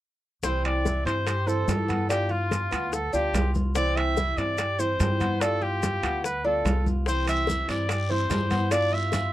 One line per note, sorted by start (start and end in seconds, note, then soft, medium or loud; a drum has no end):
0.43 1.02 C2 medium
0.43 0.84 C3 medium
0.43 0.84 E3 medium
0.43 0.84 G3 medium
0.43 0.84 C4 medium
0.43 0.85 C4 medium
0.43 0.85 E4 medium
0.43 0.63 C5 medium
0.43 high bongo medium
0.43 high conga soft
0.43 maracas medium
0.64 1.04 D5 medium
0.64 high bongo soft
0.64 high conga soft
0.64 high timbale medium
0.85 1.05 E3 soft
0.85 1.06 G3 soft
0.85 1.05 C4 medium
0.85 1.26 E4 medium
0.85 1.04 E4 medium
0.85 high bongo medium
0.85 high conga medium
0.85 low timbale medium
0.85 maracas medium
1.05 1.64 G2 medium
1.05 1.25 E3 soft
1.05 1.25 G3 medium
1.05 1.25 C4 medium
1.05 1.25 E4 medium
1.05 1.49 C5 medium
1.05 high bongo soft
1.05 high conga soft
1.05 high timbale medium
1.05 maracas soft
1.26 1.47 G4 medium
1.26 muted nylon-string guitar stroke medium
1.26 high bongo medium
1.26 high conga soft
1.26 high timbale medium
1.26 maracas medium
1.46 1.66 E3 medium
1.46 1.67 G3 medium
1.46 1.67 C4 medium
1.46 1.67 E4 medium
1.46 2.09 A4 medium
1.46 1.68 C5 medium
1.46 high bongo soft
1.46 high conga soft
1.46 maracas medium
1.67 2.66 G2 medium
1.67 2.09 E3 medium
1.67 2.08 G3 medium
1.67 2.09 C4 medium
1.67 2.09 E4 medium
1.67 1.88 G4 medium
1.67 high bongo soft
1.67 low bongo medium
1.67 high conga medium
1.67 high timbale medium
1.67 low timbale medium
1.67 maracas medium
1.88 2.09 B3 medium
1.88 high conga medium
1.88 high timbale medium
1.88 maracas soft
2.09 2.49 G3 medium
2.09 2.50 B3 medium
2.09 2.30 D4 medium
2.09 2.51 F4 medium
2.09 2.33 G4 medium
2.09 high bongo medium
2.09 high conga soft
2.09 high timbale medium
2.09 maracas medium
2.29 2.70 F4 medium
2.29 2.95 F4 medium
2.29 high bongo soft
2.29 high conga soft
2.51 2.71 G3 soft
2.51 2.71 B3 soft
2.51 2.71 F4 soft
2.51 high bongo medium
2.51 high conga medium
2.51 high timbale medium
2.51 low timbale soft
2.51 maracas medium
2.71 3.11 D2 medium
2.71 3.12 B3 medium
2.71 2.93 B3 medium
2.71 2.92 F4 medium
2.71 high bongo soft
2.71 high conga soft
2.71 high timbale medium
2.71 maracas soft
2.93 3.14 A4 medium
2.93 muted nylon-string guitar stroke medium
2.93 high bongo medium
2.93 high conga soft
2.93 maracas medium
3.13 3.33 D2 medium
3.13 3.34 B3 medium
3.13 3.33 D4 medium
3.13 3.33 F4 medium
3.13 3.52 G4 medium
3.13 high bongo soft
3.13 high conga soft
3.13 maracas medium
3.33 4.31 C2 medium
3.33 3.75 G3 medium
3.33 3.75 B3 soft
3.33 3.74 F4 medium
3.33 3.75 F4 medium
3.33 high bongo soft
3.33 low bongo medium
3.33 high conga medium
3.33 high timbale medium
3.33 low timbale medium
3.33 maracas medium
3.55 high conga medium
3.55 maracas soft
3.75 4.16 C3 medium
3.75 4.16 E3 medium
3.75 4.16 G3 medium
3.75 4.16 C4 medium
3.75 4.17 E4 medium
3.75 3.98 D5 loud
3.75 high bongo medium
3.75 high conga soft
3.75 maracas medium
3.96 4.39 E5 loud
3.96 high bongo soft
3.96 high conga soft
3.96 high timbale medium
4.17 4.37 E3 soft
4.17 4.37 G3 soft
4.17 4.57 E4 medium
4.17 4.37 E4 medium
4.17 high bongo medium
4.17 high conga soft
4.17 low timbale medium
4.17 maracas medium
4.37 4.96 G2 medium
4.37 4.58 E3 medium
4.37 4.58 G3 medium
4.37 4.58 C4 medium
4.37 4.58 E4 medium
4.37 4.81 D5 medium
4.37 high bongo soft
4.37 high conga soft
4.37 high timbale medium
4.37 maracas soft
4.58 4.78 G4 medium
4.58 muted nylon-string guitar stroke medium
4.58 high bongo medium
4.58 high conga soft
4.58 high timbale medium
4.58 maracas medium
4.79 4.98 E3 medium
4.79 4.99 G3 medium
4.79 4.99 C4 medium
4.79 4.99 E4 medium
4.79 4.99 C5 medium
4.79 5.43 C5 medium
4.79 high bongo soft
4.79 high conga soft
4.79 maracas medium
4.99 5.97 G2 medium
4.99 5.40 E3 soft
4.99 5.39 G3 soft
4.99 5.41 C4 medium
4.99 5.41 E4 medium
4.99 5.20 G4 medium
4.99 high bongo soft
4.99 low bongo medium
4.99 high conga medium
4.99 high timbale medium
4.99 low timbale medium
4.99 maracas medium
5.20 5.40 B3 medium
5.20 high conga medium
5.20 high timbale medium
5.20 maracas soft
5.41 5.81 G3 medium
5.41 5.82 B3 medium
5.41 5.61 D4 medium
5.41 5.82 F4 medium
5.41 5.64 A4 loud
5.41 high bongo medium
5.41 high conga soft
5.41 high timbale medium
5.41 maracas medium
5.61 6.02 F4 medium
5.61 6.24 G4 loud
5.61 high bongo soft
5.61 high conga soft
5.82 6.02 G3 soft
5.82 6.03 B3 soft
5.82 6.02 F4 medium
5.82 high bongo medium
5.82 high conga medium
5.82 high timbale medium
5.82 low timbale medium
5.82 maracas medium
6.03 6.61 D2 medium
6.03 6.43 B3 medium
6.03 6.23 B3 medium
6.03 6.23 F4 medium
6.03 high bongo soft
6.03 high conga soft
6.03 high timbale medium
6.03 maracas soft
6.24 6.47 B4 medium
6.24 muted nylon-string guitar stroke medium
6.24 high bongo medium
6.24 high conga soft
6.24 maracas medium
6.44 6.65 B3 medium
6.44 6.65 D4 medium
6.44 6.64 F4 medium
6.44 6.86 A4 medium
6.44 high bongo soft
6.44 high conga soft
6.64 7.62 C2 medium
6.64 7.06 G3 medium
6.64 7.06 B3 medium
6.64 7.05 F4 medium
6.64 7.07 F4 medium
6.64 high bongo soft
6.64 low bongo medium
6.64 high conga medium
6.64 high timbale medium
6.64 low timbale medium
6.64 maracas medium
6.86 high conga medium
6.86 maracas soft
7.06 7.47 C3 medium
7.06 7.47 E3 medium
7.06 7.47 G3 medium
7.06 7.47 C4 medium
7.06 7.48 C4 medium
7.06 7.48 E4 medium
7.06 7.27 C5 loud
7.06 high bongo medium
7.06 high conga soft
7.06 long guiro medium
7.06 maracas medium
7.27 7.67 E5 loud
7.27 high bongo soft
7.27 high conga soft
7.27 high timbale medium
7.27 maracas medium
7.47 7.68 E3 soft
7.47 7.68 G3 soft
7.47 7.68 C4 soft
7.47 7.88 E4 medium
7.47 7.67 E4 medium
7.47 high bongo medium
7.47 high conga soft
7.47 low timbale medium
7.47 short guiro medium
7.47 maracas medium
7.68 8.26 G2 medium
7.68 7.88 E3 medium
7.68 7.88 G3 medium
7.68 7.88 C4 medium
7.68 7.88 E4 medium
7.68 8.12 D5 medium
7.68 high bongo soft
7.68 high conga soft
7.68 high timbale medium
7.68 short guiro medium
7.68 maracas soft
7.89 8.09 G4 medium
7.89 muted nylon-string guitar stroke medium
7.89 high bongo medium
7.89 high conga soft
7.89 high timbale medium
7.89 long guiro medium
7.89 maracas medium
8.09 8.29 E3 medium
8.09 8.29 G3 medium
8.09 8.30 C4 medium
8.09 8.30 E4 medium
8.09 8.30 C5 medium
8.09 8.73 C5 medium
8.09 high bongo soft
8.09 high conga soft
8.30 9.27 G2 medium
8.30 8.71 E3 soft
8.30 8.70 G3 medium
8.30 8.71 C4 medium
8.30 8.72 E4 medium
8.30 8.50 G4 medium
8.30 high bongo soft
8.30 low bongo medium
8.30 high conga medium
8.30 high timbale medium
8.30 low timbale medium
8.30 short guiro medium
8.30 maracas medium
8.50 8.71 B3 medium
8.50 high conga medium
8.50 high timbale medium
8.50 short guiro medium
8.50 maracas soft
8.71 9.11 G3 medium
8.71 9.11 B3 medium
8.71 8.91 D4 medium
8.71 9.12 F4 medium
8.71 8.95 D5 loud
8.71 high bongo medium
8.71 high conga soft
8.71 high timbale medium
8.71 long guiro medium
8.71 maracas medium
8.91 9.32 F4 medium
8.91 9.33 E5 medium
8.91 high bongo soft
8.91 high conga soft
9.12 9.32 G3 medium
9.12 9.33 B3 medium
9.12 9.32 F4 medium
9.12 high bongo medium
9.12 high conga medium
9.12 high timbale medium
9.12 low timbale medium
9.12 short guiro medium
9.12 maracas medium